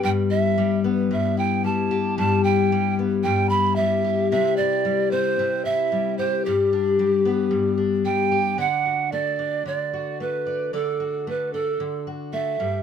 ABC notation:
X:1
M:4/4
L:1/8
Q:1/4=112
K:Dmix
V:1 name="Pan flute"
g e2 z e g a2 | a g3 g b e2 | e d2 c2 e2 c | G6 g2 |
f2 d2 d2 B2 | A2 B A2 z e2 |]
V:2 name="Twelve-string acoustic guitar"
G,, E G, B, G,, E G, G | G,, E G, B, G,, E G, G | C, E G, C C, E G, G | G,, D G, B, G,, D G, G |
[D,d] F A, D D, F A, d | [D,d] F A, D D, F A, G,, |]